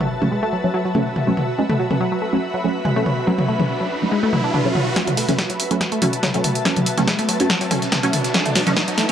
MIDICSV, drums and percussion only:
0, 0, Header, 1, 2, 480
1, 0, Start_track
1, 0, Key_signature, 3, "minor"
1, 0, Tempo, 422535
1, 1798, Time_signature, 4, 2, 24, 8
1, 10359, End_track
2, 0, Start_track
2, 0, Title_t, "Drums"
2, 6, Note_on_c, 9, 47, 83
2, 120, Note_off_c, 9, 47, 0
2, 246, Note_on_c, 9, 47, 77
2, 360, Note_off_c, 9, 47, 0
2, 1078, Note_on_c, 9, 47, 75
2, 1192, Note_off_c, 9, 47, 0
2, 1319, Note_on_c, 9, 47, 84
2, 1432, Note_off_c, 9, 47, 0
2, 1559, Note_on_c, 9, 47, 83
2, 1672, Note_off_c, 9, 47, 0
2, 1925, Note_on_c, 9, 47, 87
2, 2039, Note_off_c, 9, 47, 0
2, 2166, Note_on_c, 9, 47, 79
2, 2279, Note_off_c, 9, 47, 0
2, 3238, Note_on_c, 9, 47, 86
2, 3352, Note_off_c, 9, 47, 0
2, 3478, Note_on_c, 9, 47, 84
2, 3591, Note_off_c, 9, 47, 0
2, 3845, Note_on_c, 9, 47, 90
2, 3959, Note_off_c, 9, 47, 0
2, 4085, Note_on_c, 9, 47, 83
2, 4198, Note_off_c, 9, 47, 0
2, 4918, Note_on_c, 9, 47, 81
2, 5031, Note_off_c, 9, 47, 0
2, 5157, Note_on_c, 9, 47, 93
2, 5270, Note_off_c, 9, 47, 0
2, 5397, Note_on_c, 9, 47, 89
2, 5511, Note_off_c, 9, 47, 0
2, 5637, Note_on_c, 9, 38, 51
2, 5637, Note_on_c, 9, 42, 70
2, 5638, Note_off_c, 9, 42, 0
2, 5638, Note_on_c, 9, 36, 114
2, 5638, Note_on_c, 9, 42, 86
2, 5751, Note_off_c, 9, 38, 0
2, 5752, Note_off_c, 9, 36, 0
2, 5752, Note_off_c, 9, 42, 0
2, 5765, Note_on_c, 9, 42, 65
2, 5765, Note_on_c, 9, 47, 85
2, 5877, Note_on_c, 9, 46, 104
2, 5878, Note_off_c, 9, 42, 0
2, 5878, Note_off_c, 9, 46, 0
2, 5878, Note_off_c, 9, 47, 0
2, 5878, Note_on_c, 9, 46, 77
2, 5991, Note_off_c, 9, 46, 0
2, 6004, Note_on_c, 9, 42, 67
2, 6004, Note_on_c, 9, 47, 78
2, 6005, Note_on_c, 9, 38, 38
2, 6118, Note_off_c, 9, 38, 0
2, 6118, Note_off_c, 9, 42, 0
2, 6118, Note_off_c, 9, 47, 0
2, 6118, Note_on_c, 9, 36, 116
2, 6118, Note_on_c, 9, 38, 111
2, 6118, Note_on_c, 9, 42, 87
2, 6231, Note_off_c, 9, 38, 0
2, 6231, Note_off_c, 9, 42, 0
2, 6232, Note_off_c, 9, 36, 0
2, 6245, Note_on_c, 9, 42, 70
2, 6358, Note_off_c, 9, 42, 0
2, 6358, Note_on_c, 9, 46, 102
2, 6359, Note_on_c, 9, 42, 65
2, 6471, Note_off_c, 9, 46, 0
2, 6472, Note_off_c, 9, 42, 0
2, 6485, Note_on_c, 9, 42, 70
2, 6597, Note_off_c, 9, 42, 0
2, 6597, Note_on_c, 9, 38, 54
2, 6597, Note_on_c, 9, 42, 70
2, 6598, Note_on_c, 9, 36, 118
2, 6599, Note_off_c, 9, 42, 0
2, 6599, Note_on_c, 9, 42, 85
2, 6711, Note_off_c, 9, 38, 0
2, 6712, Note_off_c, 9, 36, 0
2, 6712, Note_off_c, 9, 42, 0
2, 6724, Note_on_c, 9, 42, 69
2, 6837, Note_on_c, 9, 46, 104
2, 6837, Note_on_c, 9, 47, 77
2, 6838, Note_off_c, 9, 42, 0
2, 6838, Note_on_c, 9, 42, 66
2, 6951, Note_off_c, 9, 46, 0
2, 6951, Note_off_c, 9, 47, 0
2, 6952, Note_off_c, 9, 42, 0
2, 6964, Note_on_c, 9, 42, 71
2, 7077, Note_off_c, 9, 42, 0
2, 7077, Note_on_c, 9, 38, 116
2, 7077, Note_on_c, 9, 42, 90
2, 7077, Note_on_c, 9, 47, 87
2, 7078, Note_on_c, 9, 36, 118
2, 7191, Note_off_c, 9, 38, 0
2, 7191, Note_off_c, 9, 42, 0
2, 7191, Note_off_c, 9, 47, 0
2, 7192, Note_off_c, 9, 36, 0
2, 7205, Note_on_c, 9, 42, 66
2, 7318, Note_off_c, 9, 42, 0
2, 7318, Note_on_c, 9, 42, 68
2, 7318, Note_on_c, 9, 46, 105
2, 7318, Note_on_c, 9, 47, 86
2, 7431, Note_off_c, 9, 46, 0
2, 7431, Note_off_c, 9, 47, 0
2, 7432, Note_off_c, 9, 42, 0
2, 7445, Note_on_c, 9, 42, 66
2, 7558, Note_off_c, 9, 42, 0
2, 7558, Note_on_c, 9, 36, 122
2, 7558, Note_on_c, 9, 38, 59
2, 7558, Note_on_c, 9, 42, 90
2, 7671, Note_off_c, 9, 38, 0
2, 7672, Note_off_c, 9, 36, 0
2, 7672, Note_off_c, 9, 42, 0
2, 7685, Note_on_c, 9, 42, 67
2, 7685, Note_on_c, 9, 47, 84
2, 7797, Note_on_c, 9, 46, 109
2, 7798, Note_off_c, 9, 42, 0
2, 7798, Note_off_c, 9, 47, 0
2, 7798, Note_on_c, 9, 42, 67
2, 7911, Note_off_c, 9, 46, 0
2, 7912, Note_off_c, 9, 42, 0
2, 7924, Note_on_c, 9, 42, 68
2, 7924, Note_on_c, 9, 47, 81
2, 7926, Note_on_c, 9, 38, 50
2, 8038, Note_off_c, 9, 38, 0
2, 8038, Note_off_c, 9, 42, 0
2, 8038, Note_off_c, 9, 47, 0
2, 8038, Note_on_c, 9, 36, 121
2, 8038, Note_on_c, 9, 38, 116
2, 8038, Note_on_c, 9, 42, 88
2, 8151, Note_off_c, 9, 38, 0
2, 8151, Note_off_c, 9, 42, 0
2, 8152, Note_off_c, 9, 36, 0
2, 8165, Note_on_c, 9, 42, 71
2, 8166, Note_off_c, 9, 42, 0
2, 8166, Note_on_c, 9, 42, 42
2, 8278, Note_off_c, 9, 42, 0
2, 8278, Note_on_c, 9, 42, 67
2, 8278, Note_on_c, 9, 46, 107
2, 8392, Note_off_c, 9, 42, 0
2, 8392, Note_off_c, 9, 46, 0
2, 8405, Note_on_c, 9, 42, 69
2, 8518, Note_off_c, 9, 42, 0
2, 8518, Note_on_c, 9, 36, 124
2, 8518, Note_on_c, 9, 38, 67
2, 8518, Note_on_c, 9, 42, 85
2, 8631, Note_off_c, 9, 38, 0
2, 8631, Note_off_c, 9, 42, 0
2, 8632, Note_off_c, 9, 36, 0
2, 8646, Note_on_c, 9, 42, 43
2, 8646, Note_on_c, 9, 46, 64
2, 8757, Note_off_c, 9, 42, 0
2, 8757, Note_on_c, 9, 42, 68
2, 8758, Note_off_c, 9, 46, 0
2, 8758, Note_on_c, 9, 36, 62
2, 8758, Note_on_c, 9, 46, 107
2, 8758, Note_on_c, 9, 47, 77
2, 8871, Note_off_c, 9, 42, 0
2, 8872, Note_off_c, 9, 36, 0
2, 8872, Note_off_c, 9, 46, 0
2, 8872, Note_off_c, 9, 47, 0
2, 8885, Note_on_c, 9, 38, 39
2, 8886, Note_on_c, 9, 42, 72
2, 8997, Note_off_c, 9, 38, 0
2, 8997, Note_off_c, 9, 42, 0
2, 8997, Note_on_c, 9, 38, 118
2, 8997, Note_on_c, 9, 42, 89
2, 8998, Note_off_c, 9, 38, 0
2, 8998, Note_off_c, 9, 42, 0
2, 8998, Note_on_c, 9, 36, 119
2, 8998, Note_on_c, 9, 38, 69
2, 8998, Note_on_c, 9, 42, 68
2, 8998, Note_on_c, 9, 47, 87
2, 9112, Note_off_c, 9, 36, 0
2, 9112, Note_off_c, 9, 38, 0
2, 9112, Note_off_c, 9, 42, 0
2, 9112, Note_off_c, 9, 47, 0
2, 9126, Note_on_c, 9, 42, 71
2, 9237, Note_off_c, 9, 42, 0
2, 9237, Note_on_c, 9, 42, 70
2, 9238, Note_on_c, 9, 46, 106
2, 9238, Note_on_c, 9, 47, 88
2, 9351, Note_off_c, 9, 42, 0
2, 9352, Note_off_c, 9, 46, 0
2, 9352, Note_off_c, 9, 47, 0
2, 9365, Note_on_c, 9, 38, 39
2, 9365, Note_on_c, 9, 42, 65
2, 9478, Note_off_c, 9, 38, 0
2, 9478, Note_off_c, 9, 42, 0
2, 9478, Note_on_c, 9, 36, 122
2, 9478, Note_on_c, 9, 38, 74
2, 9478, Note_on_c, 9, 42, 72
2, 9592, Note_off_c, 9, 36, 0
2, 9592, Note_off_c, 9, 38, 0
2, 9592, Note_off_c, 9, 42, 0
2, 9605, Note_on_c, 9, 42, 65
2, 9605, Note_on_c, 9, 47, 91
2, 9718, Note_on_c, 9, 38, 77
2, 9718, Note_on_c, 9, 46, 112
2, 9719, Note_off_c, 9, 42, 0
2, 9719, Note_off_c, 9, 47, 0
2, 9832, Note_off_c, 9, 38, 0
2, 9832, Note_off_c, 9, 46, 0
2, 9845, Note_on_c, 9, 38, 37
2, 9846, Note_on_c, 9, 42, 67
2, 9846, Note_on_c, 9, 47, 82
2, 9957, Note_off_c, 9, 38, 0
2, 9957, Note_off_c, 9, 42, 0
2, 9957, Note_on_c, 9, 38, 114
2, 9957, Note_on_c, 9, 42, 92
2, 9958, Note_off_c, 9, 38, 0
2, 9958, Note_off_c, 9, 42, 0
2, 9958, Note_on_c, 9, 36, 120
2, 9958, Note_on_c, 9, 38, 77
2, 9958, Note_on_c, 9, 42, 67
2, 9959, Note_off_c, 9, 47, 0
2, 10072, Note_off_c, 9, 36, 0
2, 10072, Note_off_c, 9, 38, 0
2, 10072, Note_off_c, 9, 42, 0
2, 10086, Note_on_c, 9, 42, 67
2, 10198, Note_off_c, 9, 42, 0
2, 10198, Note_on_c, 9, 38, 80
2, 10198, Note_on_c, 9, 42, 67
2, 10198, Note_on_c, 9, 46, 114
2, 10312, Note_off_c, 9, 38, 0
2, 10312, Note_off_c, 9, 42, 0
2, 10312, Note_off_c, 9, 46, 0
2, 10359, End_track
0, 0, End_of_file